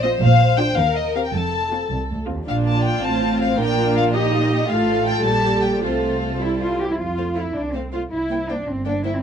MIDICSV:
0, 0, Header, 1, 6, 480
1, 0, Start_track
1, 0, Key_signature, -2, "major"
1, 0, Tempo, 372439
1, 284, Time_signature, 6, 3, 24, 8
1, 6046, Key_signature, -1, "major"
1, 6527, Tempo, 385356
1, 8927, Tempo, 373832
1, 11797, End_track
2, 0, Start_track
2, 0, Title_t, "Violin section"
2, 0, Program_c, 0, 48
2, 40, Note_on_c, 0, 75, 79
2, 136, Note_off_c, 0, 75, 0
2, 282, Note_on_c, 0, 77, 97
2, 750, Note_off_c, 0, 77, 0
2, 761, Note_on_c, 0, 79, 89
2, 1001, Note_off_c, 0, 79, 0
2, 1001, Note_on_c, 0, 77, 87
2, 1242, Note_off_c, 0, 77, 0
2, 1242, Note_on_c, 0, 75, 77
2, 1485, Note_off_c, 0, 75, 0
2, 1490, Note_on_c, 0, 77, 66
2, 1538, Note_off_c, 0, 77, 0
2, 1621, Note_on_c, 0, 79, 62
2, 1730, Note_on_c, 0, 81, 71
2, 1733, Note_off_c, 0, 79, 0
2, 2460, Note_off_c, 0, 81, 0
2, 3198, Note_on_c, 0, 77, 76
2, 3294, Note_off_c, 0, 77, 0
2, 3435, Note_on_c, 0, 81, 75
2, 3671, Note_off_c, 0, 81, 0
2, 3673, Note_on_c, 0, 79, 77
2, 3910, Note_off_c, 0, 79, 0
2, 3919, Note_on_c, 0, 81, 81
2, 4395, Note_off_c, 0, 81, 0
2, 4398, Note_on_c, 0, 77, 77
2, 4628, Note_off_c, 0, 77, 0
2, 4628, Note_on_c, 0, 79, 78
2, 5093, Note_off_c, 0, 79, 0
2, 5099, Note_on_c, 0, 77, 89
2, 5195, Note_off_c, 0, 77, 0
2, 5330, Note_on_c, 0, 75, 84
2, 6027, Note_off_c, 0, 75, 0
2, 6044, Note_on_c, 0, 77, 80
2, 6524, Note_off_c, 0, 77, 0
2, 6526, Note_on_c, 0, 79, 80
2, 6756, Note_off_c, 0, 79, 0
2, 6756, Note_on_c, 0, 81, 81
2, 7225, Note_off_c, 0, 81, 0
2, 7233, Note_on_c, 0, 79, 67
2, 7474, Note_on_c, 0, 72, 54
2, 7476, Note_off_c, 0, 79, 0
2, 8660, Note_off_c, 0, 72, 0
2, 9163, Note_on_c, 0, 77, 29
2, 9241, Note_off_c, 0, 77, 0
2, 9402, Note_on_c, 0, 77, 29
2, 9481, Note_off_c, 0, 77, 0
2, 9893, Note_on_c, 0, 77, 31
2, 9970, Note_off_c, 0, 77, 0
2, 10126, Note_on_c, 0, 77, 29
2, 10204, Note_off_c, 0, 77, 0
2, 10605, Note_on_c, 0, 79, 32
2, 10683, Note_off_c, 0, 79, 0
2, 10857, Note_on_c, 0, 79, 33
2, 10932, Note_off_c, 0, 79, 0
2, 11330, Note_on_c, 0, 79, 30
2, 11406, Note_off_c, 0, 79, 0
2, 11573, Note_on_c, 0, 79, 33
2, 11648, Note_off_c, 0, 79, 0
2, 11797, End_track
3, 0, Start_track
3, 0, Title_t, "Violin section"
3, 0, Program_c, 1, 48
3, 0, Note_on_c, 1, 72, 75
3, 1001, Note_off_c, 1, 72, 0
3, 1005, Note_on_c, 1, 70, 65
3, 1730, Note_on_c, 1, 69, 55
3, 1731, Note_off_c, 1, 70, 0
3, 2804, Note_off_c, 1, 69, 0
3, 3917, Note_on_c, 1, 72, 60
3, 4580, Note_off_c, 1, 72, 0
3, 4623, Note_on_c, 1, 70, 71
3, 5331, Note_on_c, 1, 67, 65
3, 5336, Note_off_c, 1, 70, 0
3, 5565, Note_off_c, 1, 67, 0
3, 5579, Note_on_c, 1, 65, 57
3, 5811, Note_on_c, 1, 67, 59
3, 5812, Note_off_c, 1, 65, 0
3, 6047, Note_off_c, 1, 67, 0
3, 6056, Note_on_c, 1, 69, 73
3, 7462, Note_off_c, 1, 69, 0
3, 7477, Note_on_c, 1, 69, 51
3, 8543, Note_off_c, 1, 69, 0
3, 9165, Note_on_c, 1, 72, 27
3, 9244, Note_off_c, 1, 72, 0
3, 9397, Note_on_c, 1, 72, 29
3, 9477, Note_off_c, 1, 72, 0
3, 9882, Note_on_c, 1, 72, 32
3, 9961, Note_off_c, 1, 72, 0
3, 10132, Note_on_c, 1, 72, 29
3, 10209, Note_off_c, 1, 72, 0
3, 10609, Note_on_c, 1, 72, 28
3, 10686, Note_off_c, 1, 72, 0
3, 10845, Note_on_c, 1, 72, 31
3, 10922, Note_off_c, 1, 72, 0
3, 11325, Note_on_c, 1, 72, 33
3, 11402, Note_off_c, 1, 72, 0
3, 11555, Note_on_c, 1, 72, 33
3, 11634, Note_off_c, 1, 72, 0
3, 11797, End_track
4, 0, Start_track
4, 0, Title_t, "Cello section"
4, 0, Program_c, 2, 48
4, 0, Note_on_c, 2, 46, 78
4, 134, Note_off_c, 2, 46, 0
4, 285, Note_on_c, 2, 46, 78
4, 850, Note_off_c, 2, 46, 0
4, 999, Note_on_c, 2, 39, 69
4, 1575, Note_off_c, 2, 39, 0
4, 1735, Note_on_c, 2, 41, 58
4, 2310, Note_off_c, 2, 41, 0
4, 2464, Note_on_c, 2, 36, 50
4, 2561, Note_off_c, 2, 36, 0
4, 2713, Note_on_c, 2, 38, 49
4, 2809, Note_off_c, 2, 38, 0
4, 2957, Note_on_c, 2, 39, 48
4, 3191, Note_off_c, 2, 39, 0
4, 3199, Note_on_c, 2, 46, 53
4, 3870, Note_off_c, 2, 46, 0
4, 3920, Note_on_c, 2, 45, 55
4, 4617, Note_off_c, 2, 45, 0
4, 4638, Note_on_c, 2, 46, 58
4, 6050, Note_off_c, 2, 46, 0
4, 6051, Note_on_c, 2, 45, 57
4, 6714, Note_off_c, 2, 45, 0
4, 6764, Note_on_c, 2, 46, 50
4, 7480, Note_off_c, 2, 46, 0
4, 7481, Note_on_c, 2, 48, 44
4, 8204, Note_on_c, 2, 64, 61
4, 8205, Note_off_c, 2, 48, 0
4, 8300, Note_off_c, 2, 64, 0
4, 8446, Note_on_c, 2, 65, 54
4, 8682, Note_off_c, 2, 65, 0
4, 8686, Note_on_c, 2, 67, 55
4, 8807, Note_off_c, 2, 67, 0
4, 8821, Note_on_c, 2, 64, 52
4, 8866, Note_off_c, 2, 64, 0
4, 8926, Note_on_c, 2, 65, 45
4, 9401, Note_off_c, 2, 65, 0
4, 9408, Note_on_c, 2, 64, 43
4, 9648, Note_on_c, 2, 62, 46
4, 9651, Note_off_c, 2, 64, 0
4, 9888, Note_on_c, 2, 60, 41
4, 9891, Note_off_c, 2, 62, 0
4, 10131, Note_off_c, 2, 60, 0
4, 10132, Note_on_c, 2, 65, 48
4, 10228, Note_off_c, 2, 65, 0
4, 10373, Note_on_c, 2, 64, 49
4, 10841, Note_off_c, 2, 64, 0
4, 10848, Note_on_c, 2, 62, 45
4, 11088, Note_off_c, 2, 62, 0
4, 11089, Note_on_c, 2, 60, 47
4, 11328, Note_off_c, 2, 60, 0
4, 11329, Note_on_c, 2, 62, 45
4, 11563, Note_off_c, 2, 62, 0
4, 11571, Note_on_c, 2, 64, 50
4, 11686, Note_off_c, 2, 64, 0
4, 11693, Note_on_c, 2, 60, 42
4, 11797, Note_off_c, 2, 60, 0
4, 11797, End_track
5, 0, Start_track
5, 0, Title_t, "Viola section"
5, 0, Program_c, 3, 48
5, 52, Note_on_c, 3, 60, 72
5, 52, Note_on_c, 3, 65, 70
5, 226, Note_off_c, 3, 60, 0
5, 226, Note_off_c, 3, 65, 0
5, 766, Note_on_c, 3, 65, 64
5, 767, Note_on_c, 3, 62, 64
5, 942, Note_off_c, 3, 62, 0
5, 942, Note_off_c, 3, 65, 0
5, 1485, Note_on_c, 3, 60, 51
5, 1487, Note_on_c, 3, 67, 53
5, 1667, Note_off_c, 3, 60, 0
5, 1668, Note_off_c, 3, 67, 0
5, 2220, Note_on_c, 3, 65, 51
5, 2222, Note_on_c, 3, 60, 47
5, 2399, Note_off_c, 3, 65, 0
5, 2400, Note_off_c, 3, 60, 0
5, 2952, Note_on_c, 3, 60, 44
5, 2954, Note_on_c, 3, 65, 47
5, 3132, Note_off_c, 3, 60, 0
5, 3132, Note_off_c, 3, 65, 0
5, 3185, Note_on_c, 3, 65, 56
5, 3188, Note_on_c, 3, 62, 49
5, 3864, Note_off_c, 3, 62, 0
5, 3907, Note_on_c, 3, 60, 51
5, 4575, Note_off_c, 3, 65, 0
5, 4622, Note_on_c, 3, 65, 60
5, 4625, Note_off_c, 3, 60, 0
5, 4626, Note_on_c, 3, 62, 60
5, 5321, Note_off_c, 3, 65, 0
5, 5338, Note_off_c, 3, 62, 0
5, 5344, Note_on_c, 3, 63, 61
5, 5344, Note_on_c, 3, 67, 57
5, 6048, Note_off_c, 3, 63, 0
5, 6048, Note_off_c, 3, 67, 0
5, 6051, Note_on_c, 3, 65, 57
5, 6053, Note_on_c, 3, 57, 54
5, 6714, Note_off_c, 3, 65, 0
5, 6715, Note_off_c, 3, 57, 0
5, 6763, Note_on_c, 3, 67, 53
5, 6764, Note_on_c, 3, 55, 53
5, 7471, Note_on_c, 3, 57, 43
5, 7472, Note_on_c, 3, 65, 46
5, 7479, Note_off_c, 3, 67, 0
5, 7480, Note_off_c, 3, 55, 0
5, 8199, Note_on_c, 3, 55, 41
5, 8200, Note_off_c, 3, 57, 0
5, 8200, Note_off_c, 3, 65, 0
5, 8202, Note_on_c, 3, 64, 42
5, 8675, Note_off_c, 3, 55, 0
5, 8686, Note_off_c, 3, 64, 0
5, 9159, Note_on_c, 3, 57, 28
5, 9239, Note_off_c, 3, 57, 0
5, 9406, Note_on_c, 3, 57, 31
5, 9484, Note_off_c, 3, 57, 0
5, 9882, Note_on_c, 3, 57, 32
5, 9961, Note_off_c, 3, 57, 0
5, 10129, Note_on_c, 3, 57, 28
5, 10207, Note_off_c, 3, 57, 0
5, 10609, Note_on_c, 3, 58, 29
5, 10686, Note_off_c, 3, 58, 0
5, 10850, Note_on_c, 3, 58, 31
5, 10927, Note_off_c, 3, 58, 0
5, 11326, Note_on_c, 3, 58, 33
5, 11403, Note_off_c, 3, 58, 0
5, 11567, Note_on_c, 3, 58, 32
5, 11643, Note_off_c, 3, 58, 0
5, 11797, End_track
6, 0, Start_track
6, 0, Title_t, "Double bass section"
6, 0, Program_c, 4, 48
6, 0, Note_on_c, 4, 34, 94
6, 135, Note_off_c, 4, 34, 0
6, 285, Note_on_c, 4, 34, 89
6, 850, Note_off_c, 4, 34, 0
6, 1003, Note_on_c, 4, 39, 74
6, 1577, Note_off_c, 4, 39, 0
6, 1729, Note_on_c, 4, 29, 60
6, 2306, Note_off_c, 4, 29, 0
6, 2467, Note_on_c, 4, 36, 59
6, 3042, Note_off_c, 4, 36, 0
6, 3195, Note_on_c, 4, 34, 57
6, 3867, Note_off_c, 4, 34, 0
6, 3918, Note_on_c, 4, 33, 64
6, 4616, Note_off_c, 4, 33, 0
6, 4627, Note_on_c, 4, 34, 63
6, 6043, Note_on_c, 4, 33, 61
6, 6045, Note_off_c, 4, 34, 0
6, 6709, Note_off_c, 4, 33, 0
6, 6759, Note_on_c, 4, 34, 60
6, 7477, Note_off_c, 4, 34, 0
6, 7477, Note_on_c, 4, 36, 50
6, 8686, Note_off_c, 4, 36, 0
6, 8920, Note_on_c, 4, 41, 36
6, 9529, Note_off_c, 4, 41, 0
6, 9649, Note_on_c, 4, 36, 37
6, 10251, Note_off_c, 4, 36, 0
6, 10369, Note_on_c, 4, 36, 38
6, 10968, Note_off_c, 4, 36, 0
6, 11090, Note_on_c, 4, 31, 44
6, 11686, Note_off_c, 4, 31, 0
6, 11797, End_track
0, 0, End_of_file